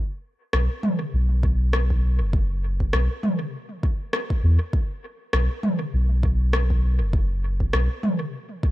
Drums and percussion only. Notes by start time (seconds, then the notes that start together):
0.53 cross-stick
0.83 mid tom
1.43 kick
1.73 cross-stick
1.90 kick
2.33 kick
2.80 kick
2.93 cross-stick
3.23 mid tom
3.83 kick
4.13 cross-stick
4.30 kick
4.73 kick
5.33 cross-stick
5.63 mid tom
6.23 kick
6.53 cross-stick
6.70 kick
7.13 kick
7.60 kick
7.73 cross-stick
8.03 mid tom
8.63 kick